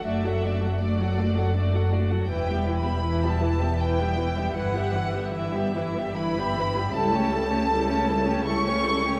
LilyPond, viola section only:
\new Staff \with { instrumentName = "Viola section" } { \time 3/4 \key e \dorian \tempo 4 = 79 <a d'>16 <fis fis'>16 <a d'>16 <fis fis'>16 <a d'>16 <fis fis'>16 <a d'>16 <fis fis'>16 <a d'>16 <fis fis'>16 <a d'>16 <fis fis'>16 | <e e'>16 <g b>16 <e e'>16 <g b>16 <e e'>16 <g b>16 <e e'>16 <g b>16 <e e'>16 <g b>16 <e e'>16 <g b>16 | <e e'>16 <g b>16 <e e'>16 <g b>16 <e e'>16 <g b>16 <e e'>16 <g b>16 <e e'>16 <g b>16 <e e'>16 <g b>16 | <g e'>16 <a cis'>16 <g e'>16 <a cis'>16 <g e'>16 <a cis'>16 <g e'>16 <a cis'>16 <g e'>16 <a cis'>16 <g e'>16 <a cis'>16 | }